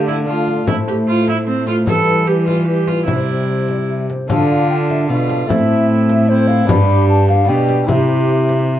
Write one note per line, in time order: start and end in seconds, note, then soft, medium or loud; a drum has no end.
0.00 0.64 D3 soft
0.00 0.64 D3 medium
0.00 0.23 A3 soft
0.00 0.24 A3 medium
0.00 0.24 D4 soft
0.00 0.25 F4 soft
0.00 0.24 F5 medium
0.08 0.16 E4 medium
0.08 frame drum soft
0.24 0.64 A3 soft
0.24 0.67 A3 medium
0.24 0.66 D4 soft
0.24 0.66 F4 soft
0.24 0.67 F4 medium
0.29 0.71 F5 medium
0.47 frame drum soft
0.65 1.90 A2 medium
0.65 1.84 A2 medium
0.65 1.83 A3 soft
0.65 1.46 A3 medium
0.65 1.83 C4 soft
0.65 0.76 E4 medium
0.65 1.84 E4 soft
0.65 frame drum medium
0.69 1.48 C5 medium
0.88 0.96 G4 medium
1.08 1.28 F4 medium
1.27 1.37 E4 medium
1.27 frame drum soft
1.48 1.87 A3 medium
1.48 1.67 C4 medium
1.48 1.90 C5 medium
1.67 1.75 F4 loud
1.67 frame drum soft
1.86 3.04 E3 medium
1.86 3.08 E3 medium
1.86 2.27 G3 medium
1.86 3.03 B3 soft
1.86 3.04 E4 soft
1.86 2.29 A4 loud
1.86 2.27 B4 medium
1.86 frame drum medium
2.27 2.67 G3 medium
2.27 2.46 G4 medium
2.27 2.67 B4 medium
2.47 2.66 F4 medium
2.47 frame drum medium
2.67 3.07 G3 medium
2.67 2.89 G4 medium
2.67 3.10 B4 medium
2.87 3.05 F4 medium
2.87 frame drum soft
3.05 4.05 C3 soft
3.05 4.08 C3 medium
3.05 4.08 G3 medium
3.05 4.24 C4 soft
3.05 3.86 E4 medium
3.05 4.25 E4 soft
3.05 3.45 C5 medium
3.05 frame drum medium
3.49 3.68 C5 medium
3.68 3.76 D5 medium
3.68 frame drum soft
3.90 4.09 E5 medium
4.10 4.30 C5 medium
4.10 frame drum soft
4.28 5.11 D3 medium
4.28 5.06 D3 medium
4.28 5.06 A3 medium
4.28 5.05 D4 medium
4.28 5.07 F4 medium
4.28 5.06 F4 medium
4.28 4.49 A5 loud
4.28 frame drum medium
4.50 4.69 F5 loud
4.70 4.76 G5 loud
4.90 5.08 E5 medium
4.90 frame drum medium
5.07 5.49 B2 medium
5.07 5.46 B2 medium
5.07 5.45 A3 medium
5.07 5.49 D4 medium
5.07 5.48 F4 medium
5.07 5.51 F4 medium
5.07 5.48 F5 loud
5.30 frame drum medium
5.47 6.67 A2 medium
5.47 6.65 A2 medium
5.47 6.64 A3 medium
5.47 6.64 C4 medium
5.47 6.28 C4 medium
5.47 6.65 E4 medium
5.47 6.29 E4 medium
5.47 5.87 E5 loud
5.47 frame drum medium
6.09 6.31 E5 loud
6.09 frame drum medium
6.29 6.71 C4 medium
6.29 6.71 E4 medium
6.29 6.49 C5 loud
6.48 6.68 F5 loud
6.48 frame drum medium
6.65 7.50 G2 loud
6.65 7.43 B3 medium
6.65 7.45 D4 medium
6.65 7.48 D4 medium
6.65 7.46 G4 medium
6.65 7.08 B5 loud
6.65 frame drum medium
6.69 7.45 G2 medium
6.69 7.49 G4 medium
7.09 7.28 A5 loud
7.29 7.50 F5 loud
7.29 frame drum medium
7.45 7.85 B2 medium
7.45 7.84 B3 medium
7.45 7.86 D4 medium
7.45 7.86 G4 medium
7.49 7.88 B2 medium
7.49 7.89 D4 medium
7.49 7.89 G4 medium
7.49 7.89 G5 loud
7.69 frame drum medium
7.84 8.80 C3 medium
7.84 8.80 C4 medium
7.84 8.80 E4 medium
7.84 8.80 G4 medium
7.88 8.80 C3 medium
7.88 8.80 G4 medium
7.88 8.80 E5 loud
7.88 frame drum medium
8.49 frame drum soft